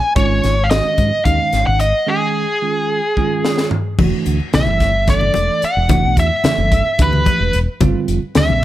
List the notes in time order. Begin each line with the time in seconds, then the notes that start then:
Already playing: G#5
0.15 G#1 D#3 G#3 C#4 F4 C#5, kick, closed hi-hat
0.44 G#1, snare, closed hi-hat
0.64 F5
0.70 D#3 G#3 C#4 F#4 D#5, snare, closed hi-hat
0.98 G#2, kick, closed hi-hat
1.25 D#2 D#3 G#3 C#4 D#4 F5, kick, closed hi-hat
1.53 G#1, snare, closed hi-hat
1.67 G#1 F#5
1.80 D#5, closed hi-hat
2.06 D#3 G#3 C#4 G#4
2.62 D#3 G#3 C#4 F4
3.17 D#3 G#3 C#4 F4, kick
3.45 snare
3.58 snare
3.71 floor tom
3.99 E1 E3 A3 D4 F#4, kick, crash, high conga, low conga
4.26 D2, closed hi-hat
4.40 muted fingered electric bass stroke, low conga
4.53 B1 E3 A3 D4 E4 E5, snare, closed hi-hat, low conga
4.67 G1, high conga
4.80 kick, snare, closed hi-hat
4.94 low conga
5.07 E3 A3 D4 A4 D5, kick, snare, closed hi-hat
5.21 low conga
5.34 E1, closed hi-hat, high conga
5.62 F#5, muted fingered electric bass stroke, closed hi-hat
5.76 E1
5.89 E3 A3 D4 F#4, kick, closed hi-hat, high conga, low conga
6.04 B1
6.17 E2 E5, kick, closed hi-hat
6.30 low conga
6.43 E3 A3 D4 A4, muted fingered electric bass stroke, snare, closed hi-hat, low conga
6.58 G1, high conga
6.72 kick, closed hi-hat
6.85 low conga
6.99 D2 E3 A3 D4 G4 B4, kick, closed hi-hat
7.13 low conga
7.26 kick, closed hi-hat, high conga
7.40 E1
7.53 E1, closed hi-hat
7.81 G1 D3 G3 C4 F4, kick, closed hi-hat, high conga, low conga
8.08 F1, closed hi-hat
8.23 low conga
8.35 D2 D3 G3 C4 D4 E5, snare, closed hi-hat, low conga
8.50 A#1, high conga